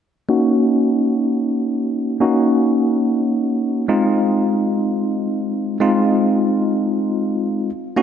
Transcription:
0, 0, Header, 1, 2, 480
1, 0, Start_track
1, 0, Tempo, 500000
1, 7704, End_track
2, 0, Start_track
2, 0, Title_t, "Tine electric piano"
2, 0, Program_c, 0, 4
2, 275, Note_on_c, 0, 58, 66
2, 279, Note_on_c, 0, 61, 61
2, 281, Note_on_c, 0, 63, 59
2, 284, Note_on_c, 0, 66, 75
2, 2083, Note_off_c, 0, 58, 0
2, 2085, Note_off_c, 0, 61, 0
2, 2086, Note_off_c, 0, 63, 0
2, 2088, Note_off_c, 0, 66, 0
2, 2115, Note_on_c, 0, 58, 66
2, 2118, Note_on_c, 0, 61, 60
2, 2121, Note_on_c, 0, 63, 65
2, 2125, Note_on_c, 0, 66, 76
2, 3699, Note_off_c, 0, 58, 0
2, 3700, Note_off_c, 0, 61, 0
2, 3702, Note_off_c, 0, 63, 0
2, 3704, Note_off_c, 0, 66, 0
2, 3728, Note_on_c, 0, 56, 69
2, 3732, Note_on_c, 0, 60, 65
2, 3735, Note_on_c, 0, 63, 64
2, 3738, Note_on_c, 0, 65, 74
2, 5538, Note_off_c, 0, 56, 0
2, 5539, Note_off_c, 0, 60, 0
2, 5541, Note_off_c, 0, 63, 0
2, 5542, Note_off_c, 0, 65, 0
2, 5572, Note_on_c, 0, 56, 69
2, 5575, Note_on_c, 0, 60, 63
2, 5579, Note_on_c, 0, 63, 62
2, 5583, Note_on_c, 0, 65, 79
2, 7381, Note_off_c, 0, 56, 0
2, 7382, Note_off_c, 0, 60, 0
2, 7385, Note_off_c, 0, 63, 0
2, 7387, Note_off_c, 0, 65, 0
2, 7646, Note_on_c, 0, 58, 69
2, 7649, Note_on_c, 0, 61, 64
2, 7653, Note_on_c, 0, 63, 59
2, 7656, Note_on_c, 0, 66, 77
2, 7704, Note_off_c, 0, 58, 0
2, 7704, Note_off_c, 0, 61, 0
2, 7704, Note_off_c, 0, 63, 0
2, 7704, Note_off_c, 0, 66, 0
2, 7704, End_track
0, 0, End_of_file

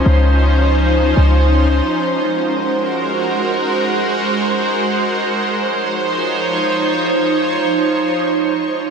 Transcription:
0, 0, Header, 1, 3, 480
1, 0, Start_track
1, 0, Key_signature, -5, "major"
1, 0, Tempo, 500000
1, 8546, End_track
2, 0, Start_track
2, 0, Title_t, "Ambient pad"
2, 0, Program_c, 0, 92
2, 0, Note_on_c, 0, 53, 81
2, 0, Note_on_c, 0, 61, 89
2, 0, Note_on_c, 0, 63, 72
2, 0, Note_on_c, 0, 72, 73
2, 1728, Note_off_c, 0, 53, 0
2, 1728, Note_off_c, 0, 61, 0
2, 1728, Note_off_c, 0, 63, 0
2, 1728, Note_off_c, 0, 72, 0
2, 1763, Note_on_c, 0, 56, 78
2, 1763, Note_on_c, 0, 66, 73
2, 1763, Note_on_c, 0, 70, 72
2, 1763, Note_on_c, 0, 72, 87
2, 5142, Note_off_c, 0, 56, 0
2, 5142, Note_off_c, 0, 66, 0
2, 5142, Note_off_c, 0, 70, 0
2, 5142, Note_off_c, 0, 72, 0
2, 5175, Note_on_c, 0, 63, 72
2, 5175, Note_on_c, 0, 72, 71
2, 5176, Note_on_c, 0, 53, 80
2, 5176, Note_on_c, 0, 73, 86
2, 8546, Note_off_c, 0, 53, 0
2, 8546, Note_off_c, 0, 63, 0
2, 8546, Note_off_c, 0, 72, 0
2, 8546, Note_off_c, 0, 73, 0
2, 8546, End_track
3, 0, Start_track
3, 0, Title_t, "808-style bass"
3, 0, Program_c, 1, 38
3, 57, Note_on_c, 1, 37, 108
3, 1085, Note_off_c, 1, 37, 0
3, 1123, Note_on_c, 1, 37, 101
3, 1738, Note_off_c, 1, 37, 0
3, 8546, End_track
0, 0, End_of_file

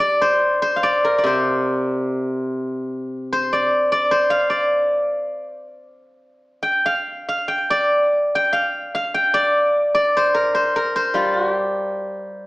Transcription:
0, 0, Header, 1, 2, 480
1, 0, Start_track
1, 0, Tempo, 840336
1, 711, Time_signature, 2, 2, 24, 8
1, 711, Tempo, 813008
1, 2631, Tempo, 848656
1, 4551, Tempo, 815217
1, 6471, Tempo, 841515
1, 7221, End_track
2, 0, Start_track
2, 0, Title_t, "Guzheng"
2, 0, Program_c, 0, 107
2, 0, Note_on_c, 0, 55, 42
2, 0, Note_on_c, 0, 67, 46
2, 0, Note_on_c, 0, 74, 69
2, 112, Note_off_c, 0, 67, 0
2, 123, Note_on_c, 0, 72, 64
2, 229, Note_off_c, 0, 55, 0
2, 352, Note_off_c, 0, 72, 0
2, 355, Note_on_c, 0, 72, 63
2, 435, Note_on_c, 0, 77, 49
2, 473, Note_off_c, 0, 74, 0
2, 475, Note_on_c, 0, 74, 63
2, 597, Note_on_c, 0, 70, 55
2, 674, Note_off_c, 0, 74, 0
2, 676, Note_on_c, 0, 74, 45
2, 706, Note_on_c, 0, 48, 43
2, 719, Note_off_c, 0, 72, 0
2, 722, Note_on_c, 0, 72, 54
2, 1410, Note_off_c, 0, 77, 0
2, 1764, Note_off_c, 0, 74, 0
2, 1848, Note_off_c, 0, 70, 0
2, 1891, Note_off_c, 0, 72, 0
2, 1939, Note_on_c, 0, 72, 67
2, 2059, Note_on_c, 0, 74, 66
2, 2152, Note_off_c, 0, 48, 0
2, 2287, Note_off_c, 0, 74, 0
2, 2290, Note_on_c, 0, 74, 70
2, 2401, Note_off_c, 0, 72, 0
2, 2404, Note_on_c, 0, 72, 65
2, 2515, Note_on_c, 0, 77, 69
2, 2629, Note_off_c, 0, 74, 0
2, 2631, Note_on_c, 0, 74, 58
2, 3463, Note_off_c, 0, 77, 0
2, 3534, Note_off_c, 0, 72, 0
2, 3675, Note_off_c, 0, 74, 0
2, 3835, Note_on_c, 0, 79, 72
2, 3965, Note_on_c, 0, 77, 69
2, 4206, Note_off_c, 0, 77, 0
2, 4208, Note_on_c, 0, 77, 65
2, 4316, Note_off_c, 0, 79, 0
2, 4318, Note_on_c, 0, 79, 66
2, 4445, Note_on_c, 0, 74, 68
2, 4820, Note_off_c, 0, 79, 0
2, 4822, Note_on_c, 0, 79, 71
2, 4923, Note_off_c, 0, 77, 0
2, 4925, Note_on_c, 0, 77, 72
2, 5170, Note_off_c, 0, 77, 0
2, 5172, Note_on_c, 0, 77, 73
2, 5286, Note_off_c, 0, 79, 0
2, 5289, Note_on_c, 0, 79, 78
2, 5401, Note_off_c, 0, 74, 0
2, 5403, Note_on_c, 0, 74, 76
2, 5758, Note_off_c, 0, 74, 0
2, 5761, Note_on_c, 0, 74, 73
2, 5891, Note_on_c, 0, 72, 66
2, 5995, Note_on_c, 0, 70, 62
2, 6111, Note_off_c, 0, 72, 0
2, 6114, Note_on_c, 0, 72, 62
2, 6154, Note_off_c, 0, 77, 0
2, 6203, Note_off_c, 0, 79, 0
2, 6237, Note_off_c, 0, 70, 0
2, 6239, Note_on_c, 0, 70, 61
2, 6354, Note_off_c, 0, 72, 0
2, 6356, Note_on_c, 0, 72, 57
2, 6463, Note_on_c, 0, 55, 38
2, 6469, Note_on_c, 0, 65, 50
2, 6600, Note_off_c, 0, 65, 0
2, 6600, Note_on_c, 0, 66, 50
2, 6674, Note_off_c, 0, 66, 0
2, 6674, Note_on_c, 0, 67, 50
2, 6835, Note_off_c, 0, 74, 0
2, 7221, Note_off_c, 0, 55, 0
2, 7221, Note_off_c, 0, 67, 0
2, 7221, Note_off_c, 0, 70, 0
2, 7221, Note_off_c, 0, 72, 0
2, 7221, End_track
0, 0, End_of_file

